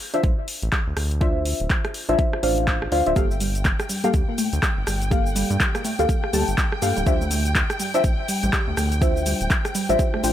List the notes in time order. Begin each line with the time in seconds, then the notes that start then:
0.14 D4 F4 C5 E5, closed hi-hat
0.23 A1, kick, closed hi-hat
0.48 open hi-hat
0.62 A1, closed hi-hat
0.72 kick, cross-stick, clap, closed hi-hat
0.87 D2
0.97 D2, cross-stick, open hi-hat
1.11 closed hi-hat
1.21 D4 F4 C5 E5, kick, closed hi-hat
1.45 open hi-hat
1.60 D1, closed hi-hat
1.70 kick, clap, closed hi-hat
1.85 cross-stick, closed hi-hat
1.94 open hi-hat
2.09 A1 D4 F4 C5 E5, closed hi-hat
2.19 kick, closed hi-hat
2.33 cross-stick
2.43 A1 D4 F4 C5 F5, open hi-hat
2.58 closed hi-hat
2.67 kick, clap, closed hi-hat
2.82 cross-stick
2.92 D2 D4 F4 C5 F5, open hi-hat
3.06 D1 D4 F4 C5 E5, closed hi-hat
3.16 G1 A#3 G4 A4 F5 G5, kick, closed hi-hat, cabasa
3.31 cabasa
3.40 G3, open hi-hat, cabasa
3.55 closed hi-hat, cabasa
3.65 kick, clap, closed hi-hat, cabasa
3.80 cross-stick, closed hi-hat, cabasa
3.89 G3, open hi-hat, cabasa
4.04 G3 A#3 G4 A4 F5, closed hi-hat, cabasa
4.14 D2 G4, kick, closed hi-hat, cabasa
4.28 A#3
4.38 A3, open hi-hat, cabasa
4.53 D2, closed hi-hat, cabasa
4.63 kick, cross-stick, clap, closed hi-hat, cabasa
4.77 G1
4.87 G1 G3, cross-stick, open hi-hat, cabasa
5.02 closed hi-hat, cabasa
5.11 A#3 G4 A4 F5, kick, closed hi-hat, cabasa
5.26 cabasa
5.36 G3, open hi-hat, cabasa
5.50 G2 G3, closed hi-hat, cabasa
5.60 G4, kick, clap, closed hi-hat, cabasa
5.75 A#3, cross-stick, closed hi-hat, cabasa
5.85 A3, open hi-hat, cabasa
5.99 D2 A#3 G4 A4 F5, closed hi-hat, cabasa
6.09 kick, closed hi-hat, cabasa
6.24 cross-stick
6.33 D2 G3 A#3 G4 A4 A5, open hi-hat, cabasa
6.48 G1, closed hi-hat, cabasa
6.58 kick, clap, closed hi-hat, cabasa
6.72 cross-stick
6.82 G2 G3 A#3 G4 A4 F5, open hi-hat, cabasa
6.97 D1 G3, closed hi-hat, cabasa
7.06 D2 D4 F4 G4 C5 E5, kick, closed hi-hat, cabasa
7.21 A3, cabasa
7.31 A3, open hi-hat, cabasa
7.45 closed hi-hat, cabasa
7.55 kick, clap, closed hi-hat, cabasa
7.70 cross-stick, closed hi-hat, cabasa
7.80 G3, open hi-hat, cabasa
7.94 D4 F4 C5 E5, closed hi-hat, cabasa
8.04 A1, kick, closed hi-hat, cabasa
8.28 G3, open hi-hat, cabasa
8.43 A1 G3, closed hi-hat, cabasa
8.53 G4, kick, cross-stick, clap, closed hi-hat, cabasa
8.67 D2 A3
8.77 D2 A3, cross-stick, open hi-hat, cabasa
8.92 closed hi-hat, cabasa
9.01 D4 F4 C5 E5, kick, closed hi-hat, cabasa
9.17 cabasa
9.26 G3, open hi-hat, cabasa
9.41 D1, closed hi-hat, cabasa
9.50 kick, clap, closed hi-hat, cabasa
9.65 cross-stick, closed hi-hat, cabasa
9.75 G3, open hi-hat, cabasa
9.89 A1 G3 D4 F4 C5 E5, closed hi-hat, cabasa
9.99 G4, kick, closed hi-hat, cabasa
10.14 A3, cross-stick
10.23 A1 A3 D4 F4 C5 G5, open hi-hat, cabasa